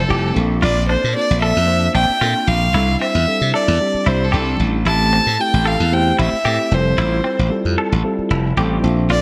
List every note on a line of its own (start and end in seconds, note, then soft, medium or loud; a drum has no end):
0.00 0.36 A4 medium
0.08 0.31 F1 medium
0.08 0.35 G3 medium
0.08 0.33 C4 medium
0.08 0.35 E4 medium
0.08 0.33 F4 medium
0.08 0.36 G4 medium
0.08 0.32 G4 medium
0.33 0.57 A#1 medium
0.33 0.99 A#3 medium
0.33 0.99 C4 medium
0.33 1.00 D4 medium
0.33 1.00 F4 medium
0.33 1.00 A4 medium
0.62 0.95 A#1 medium
0.62 0.85 F4 medium
0.62 0.87 D5 medium
0.89 1.11 D4 medium
0.89 1.13 C5 medium
1.04 1.13 A#2 medium
1.14 1.58 A#3 medium
1.14 1.58 C4 medium
1.14 1.58 D4 medium
1.14 1.58 F4 medium
1.14 1.58 A4 medium
1.14 1.40 D5 medium
1.31 1.52 A#1 medium
1.41 1.64 A4 medium
1.41 1.91 E5 medium
1.57 1.87 F2 medium
1.66 2.10 A#3 medium
1.66 2.10 C4 medium
1.66 2.10 D4 medium
1.66 2.11 F4 medium
1.66 2.11 C5 medium
1.95 2.06 A#1 medium
1.95 2.17 D4 medium
1.95 2.49 G5 loud
2.10 muted slap bass stroke soft
2.20 2.33 A#2 medium
2.20 2.64 A#3 medium
2.20 2.64 C4 medium
2.20 2.64 D4 medium
2.20 2.64 F4 medium
2.20 2.44 F4 medium
2.20 2.64 A4 medium
2.47 2.69 A#1 medium
2.47 3.00 F5 loud
2.74 2.95 C2 medium
2.74 3.18 G3 medium
2.74 3.18 C4 medium
2.74 3.18 D4 medium
2.74 2.97 E4 medium
2.74 3.18 E4 medium
2.74 3.18 A4 medium
3.01 3.24 C4 medium
3.01 3.50 E5 medium
3.15 3.25 E2 medium
3.27 3.70 G3 medium
3.27 3.70 C4 medium
3.27 3.71 D4 medium
3.27 3.71 E4 medium
3.27 3.71 A4 medium
3.41 3.51 C3 medium
3.54 3.76 A4 medium
3.54 4.09 D5 medium
3.68 3.78 E2 medium
3.80 4.24 G3 medium
3.80 4.23 C4 medium
3.80 4.24 D4 medium
3.80 4.24 E4 medium
3.80 4.24 G4 medium
3.94 muted slap bass stroke soft
4.06 4.28 C2 medium
4.06 4.29 E4 medium
4.06 4.26 C5 medium
4.24 4.61 A4 medium
4.32 4.57 C2 medium
4.32 4.76 G3 medium
4.32 4.77 C4 medium
4.32 4.77 D4 medium
4.32 4.77 E4 medium
4.32 4.55 G4 medium
4.32 4.77 A4 medium
4.60 4.84 A1 medium
4.85 5.19 A1 medium
4.85 5.29 A3 medium
4.85 5.29 C4 medium
4.85 5.29 E4 medium
4.85 5.09 E4 medium
4.85 5.29 G4 medium
4.85 5.30 A4 medium
4.85 5.42 A5 loud
5.13 5.35 C4 medium
5.27 5.37 A2 medium
5.39 5.82 A3 medium
5.39 5.83 C4 medium
5.39 5.83 E4 medium
5.39 5.83 G4 medium
5.39 5.83 A4 medium
5.39 5.69 G5 medium
5.54 5.75 A1 medium
5.65 5.88 A4 medium
5.65 5.95 F5 medium
5.80 6.11 E2 medium
5.92 6.35 A3 medium
5.92 6.35 C4 medium
5.92 6.35 E4 medium
5.92 6.36 G4 medium
5.92 6.36 C5 medium
5.92 6.19 G5 medium
6.19 6.31 A1 medium
6.19 6.41 E4 medium
6.19 6.75 E5 medium
6.45 6.57 A2 medium
6.45 6.72 A3 medium
6.45 6.70 C4 medium
6.45 6.71 E4 medium
6.45 6.67 G4 medium
6.45 6.73 G4 medium
6.45 6.71 A4 medium
6.71 6.93 F1 medium
6.71 7.36 G3 medium
6.71 7.36 C4 medium
6.71 7.37 E4 medium
6.71 7.37 F4 medium
6.71 7.37 A4 medium
6.71 7.52 C5 medium
6.98 7.19 A1 medium
6.98 7.21 E4 medium
7.24 7.47 C4 medium
7.39 7.49 A1 medium
7.49 7.94 G3 medium
7.49 7.94 C4 medium
7.49 7.94 E4 medium
7.49 7.94 F4 medium
7.49 7.95 A4 medium
7.65 7.75 F2 medium
7.78 8.00 A4 medium
7.92 8.02 A1 medium
8.04 8.47 G3 medium
8.04 8.47 C4 medium
8.04 8.48 E4 medium
8.04 8.47 F4 medium
8.04 8.48 A4 loud
8.19 muted slap bass stroke soft
8.30 8.52 F1 medium
8.30 8.53 E4 medium
8.30 8.56 A5 medium
8.57 8.78 A1 medium
8.57 8.84 G3 medium
8.57 8.81 C4 medium
8.57 8.85 E4 medium
8.57 8.83 F4 medium
8.57 8.80 G4 medium
8.57 8.83 A4 medium
8.57 8.83 G5 medium
8.82 9.05 A#1 medium
8.82 9.22 A#3 medium
8.82 9.22 C4 medium
8.82 9.22 D4 medium
8.82 9.22 F4 medium
8.82 9.22 A4 medium
8.82 9.08 E5 medium
9.09 9.22 A#1 medium
9.09 9.22 F4 medium
9.09 9.22 D5 medium